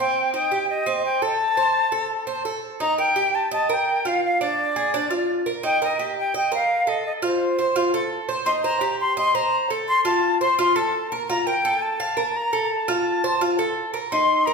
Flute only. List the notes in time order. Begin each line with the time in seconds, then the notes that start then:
0.00 G5
0.35 G5
0.70 D#5
1.06 G5
1.22 A5
2.81 A#5
2.99 G5
3.35 A5
3.53 A5
3.72 G5
4.08 F5
4.25 F5
4.42 D5
5.65 G5
5.83 D#5
6.19 G5
6.37 G5
6.54 F5
6.89 D#5
7.06 D#5
7.24 C5
8.46 C6
8.63 A#5
9.01 C6
9.18 C6
9.35 A#5
9.88 C6
10.05 A5
10.41 C6
10.59 C6
10.76 A5
11.29 A#5
11.47 G5
11.83 A5
12.36 A#5
12.64 A#5
12.72 A5
14.11 C6
14.46 A#5